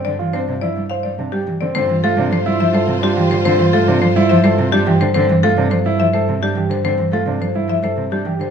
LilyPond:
<<
  \new Staff \with { instrumentName = "Marimba" } { \time 3/4 \key c \major \tempo 4 = 106 d''16 r16 c''16 r16 d''16 r16 f''16 d''16 r16 g'16 r16 d''16 | c''16 r16 a'16 r16 c''16 r16 e''16 c''16 r16 g'16 r16 c''16 | c''16 r16 a'16 r16 c''16 r16 e''16 c''16 r16 g'16 r16 c''16 | c''16 r16 a'16 r16 c''16 r16 e''16 c''16 r16 g'16 r16 c''16 |
c''16 r16 a'16 r16 c''16 r16 e''16 c''16 r16 g'16 r16 c''16 | }
  \new Staff \with { instrumentName = "String section" } { \time 3/4 \key c \major r2. | <f' c''>2.~ | <f' c''>2~ <f' c''>8. r16 | r2. |
r2. | }
  \new Staff \with { instrumentName = "French horn" } { \time 3/4 \key c \major r2. | f'2.~ | f'2~ f'8. r16 | r2. |
r2. | }
  \new Staff \with { instrumentName = "Grand piano" } { \time 3/4 \key c \major r16 f'16 d'16 r16 e'16 r16 c''16 r16 d'16 g'16 r16 c'16 | c'16 r16 f'16 d'16 r16 e'16 r16 a'16 r16 d'16 g'16 r16 | c'16 r16 f'16 d'16 r16 e'16 r16 a'16 r16 d'16 g'16 r16 | c'16 r16 f'16 d'16 r16 e'16 r16 a'16 r16 d'16 g'16 r16 |
c'16 r16 f'16 d'16 r16 e'16 r16 a'16 r16 d'16 g'16 r16 | }
  \new Staff \with { instrumentName = "Cello" } { \clef bass \time 3/4 \key c \major d16 e16 c'16 c16 f16 g16 r16 g16 c16 g16 e16 d16 | d16 e16 a16 c16 f16 g16 f16 g16 c16 g16 e16 d16 | d16 e16 a16 c16 f16 g16 f16 g16 c16 g16 e16 d16 | d16 e16 a16 c16 f16 g16 f16 g16 c16 g16 e16 d16 |
d16 e16 a16 c16 f16 g16 f16 g16 c16 g16 e16 d16 | }
  \new Staff \with { instrumentName = "Double bass" } { \clef bass \time 3/4 \key c \major g,2. | g,2.~ | g,2.~ | g,2.~ |
g,2. | }
>>